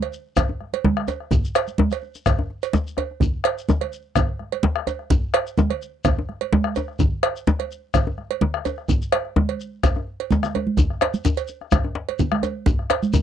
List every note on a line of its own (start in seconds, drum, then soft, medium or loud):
0.01 bombo rim soft
0.01 cowbell medium
0.01 high conga soft
0.13 shekere soft
0.37 bombo rim medium
0.37 bombo low medium
0.37 cowbell medium
0.37 low conga medium
0.37 djembe bass medium
0.37 shekere medium
0.49 djembe slap soft
0.49 djembe tone medium
0.60 bombo rim soft
0.60 high conga soft
0.73 cowbell medium
0.73 high conga soft
0.84 djembe slap medium
0.84 high conga medium
0.84 low conga medium
0.84 djembe bass medium
0.97 bombo rim medium
1.08 cowbell soft
1.08 djembe tone medium
1.08 high conga soft
1.08 shekere soft
1.20 bombo rim soft
1.31 bombo rim soft
1.31 bombo low medium
1.31 djembe slap soft
1.31 djembe bass medium
1.31 low conga medium
1.31 shekere medium
1.45 shekere soft
1.55 bombo rim medium
1.55 cowbell medium
1.55 djembe slap soft
1.55 shekere soft
1.68 high conga soft
1.68 shekere soft
1.78 djembe slap medium
1.78 high conga medium
1.78 djembe tone medium
1.78 low conga medium
1.78 djembe bass medium
1.91 bombo rim soft
1.91 cowbell soft
1.91 high conga soft
1.91 shekere soft
2.03 djembe slap soft
2.15 djembe slap soft
2.15 shekere soft
2.26 bombo rim loud
2.26 bombo low medium
2.26 cowbell soft
2.26 djembe slap soft
2.26 low conga medium
2.26 djembe bass medium
2.26 shekere medium
2.39 bombo rim soft
2.39 djembe tone medium
2.50 djembe slap soft
2.63 cowbell soft
2.63 shekere soft
2.73 bombo rim soft
2.73 djembe slap medium
2.73 high conga medium
2.73 low conga medium
2.73 djembe bass medium
2.73 shekere soft
2.87 djembe slap soft
2.87 shekere soft
2.97 bombo rim soft
2.97 cowbell medium
2.97 djembe tone medium
3.11 djembe slap soft
3.20 bombo low medium
3.20 low conga medium
3.20 djembe bass medium
3.20 shekere medium
3.44 bombo rim medium
3.44 cowbell medium
3.58 shekere soft
3.69 djembe slap medium
3.69 high conga medium
3.69 djembe tone medium
3.69 low conga medium
3.69 djembe bass medium
3.69 shekere soft
3.81 bombo rim soft
3.81 cowbell medium
3.81 djembe slap soft
3.81 high conga soft
3.93 shekere soft
4.16 bombo rim medium
4.16 bombo low medium
4.16 cowbell medium
4.16 low conga medium
4.16 djembe bass medium
4.16 shekere soft
4.29 djembe slap soft
4.39 bombo rim soft
4.39 high conga soft
4.52 cowbell soft
4.52 high conga soft
4.63 djembe slap medium
4.63 high conga medium
4.63 low conga medium
4.63 djembe bass medium
4.76 bombo rim medium
4.87 cowbell soft
4.87 djembe tone medium
4.87 high conga soft
4.87 shekere soft
4.99 bombo rim soft
5.10 bombo low medium
5.10 low conga medium
5.10 djembe bass medium
5.10 shekere soft
5.34 bombo rim medium
5.34 cowbell medium
5.47 shekere soft
5.58 djembe slap medium
5.58 high conga medium
5.58 djembe tone medium
5.58 low conga medium
5.58 djembe bass medium
5.58 shekere soft
5.70 bombo rim soft
5.70 cowbell medium
5.70 high conga soft
5.82 shekere soft
6.05 bombo rim medium
6.05 bombo low medium
6.05 cowbell soft
6.05 low conga medium
6.05 djembe bass medium
6.05 shekere medium
6.19 djembe slap soft
6.19 djembe tone medium
6.29 bombo rim soft
6.29 high conga soft
6.41 cowbell soft
6.41 high conga soft
6.53 djembe slap medium
6.53 high conga medium
6.53 low conga medium
6.53 djembe bass medium
6.64 bombo rim medium
6.76 cowbell soft
6.76 djembe tone medium
6.76 shekere soft
6.88 bombo rim soft
6.99 bombo low medium
6.99 djembe bass medium
6.99 low conga medium
6.99 shekere soft
7.23 bombo rim medium
7.23 cowbell medium
7.36 shekere soft
7.47 djembe slap medium
7.47 high conga medium
7.47 djembe tone medium
7.47 low conga medium
7.47 djembe bass medium
7.47 shekere soft
7.59 bombo rim soft
7.59 cowbell soft
7.59 djembe slap soft
7.59 high conga soft
7.71 shekere soft
7.94 bombo rim medium
7.94 bombo low medium
7.94 cowbell soft
7.94 low conga medium
7.94 djembe bass medium
7.94 shekere medium
8.07 djembe slap soft
8.07 djembe tone medium
8.18 bombo rim soft
8.18 high conga soft
8.31 cowbell medium
8.31 high conga soft
8.41 djembe slap medium
8.41 high conga medium
8.41 low conga medium
8.41 djembe bass medium
8.54 bombo rim medium
8.65 cowbell soft
8.65 high conga soft
8.65 djembe tone medium
8.65 shekere soft
8.78 bombo rim soft
8.88 bombo low medium
8.88 high conga soft
8.88 low conga medium
8.88 djembe bass medium
8.88 shekere soft
9.02 djembe slap soft
9.02 shekere soft
9.12 bombo rim medium
9.12 cowbell medium
9.12 high conga soft
9.25 bombo rim soft
9.36 djembe slap medium
9.36 djembe tone medium
9.36 high conga medium
9.36 djembe bass medium
9.36 low conga medium
9.49 cowbell soft
9.49 djembe slap soft
9.60 shekere soft
9.83 bombo rim medium
9.83 bombo low loud
9.83 cowbell soft
9.83 djembe bass medium
9.83 low conga medium
9.83 shekere medium
9.96 bombo rim soft
9.96 djembe tone medium
10.07 djembe slap soft
10.20 cowbell soft
10.20 djembe slap soft
10.31 djembe slap medium
10.31 high conga medium
10.31 low conga medium
10.31 djembe bass medium
10.31 shekere soft
10.43 bombo rim medium
10.43 djembe slap soft
10.43 low conga soft
10.43 shekere soft
10.55 cowbell soft
10.55 high conga soft
10.55 djembe tone medium
10.67 djembe slap soft
10.67 high conga medium
10.77 bombo low loud
10.77 high conga soft
10.77 low conga medium
10.77 djembe bass medium
10.77 shekere medium
10.90 bombo rim soft
11.01 bombo rim medium
11.01 cowbell medium
11.01 djembe slap medium
11.14 high conga medium
11.14 shekere soft
11.25 djembe tone medium
11.25 low conga medium
11.25 djembe bass medium
11.25 shekere medium
11.37 cowbell medium
11.37 shekere soft
11.48 djembe slap soft
11.48 shekere soft
11.61 bombo rim soft
11.61 djembe slap soft
11.72 bombo rim loud
11.72 bombo low loud
11.72 cowbell soft
11.72 high conga medium
11.72 djembe bass medium
11.72 low conga medium
11.72 shekere medium
11.84 bombo rim soft
11.84 djembe tone medium
11.95 djembe slap medium
12.09 cowbell medium
12.09 high conga soft
12.19 low conga medium
12.19 djembe bass medium
12.19 shekere medium
12.32 bombo rim medium
12.32 high conga medium
12.43 cowbell soft
12.43 djembe tone medium
12.43 shekere soft
12.66 bombo low loud
12.66 high conga soft
12.66 low conga medium
12.66 djembe bass medium
12.66 shekere medium
12.79 bombo rim soft
12.90 bombo rim loud
12.90 cowbell medium
12.90 djembe slap medium
13.03 high conga medium
13.03 shekere soft
13.13 djembe tone medium
13.13 djembe bass medium
13.13 low conga medium
13.13 shekere medium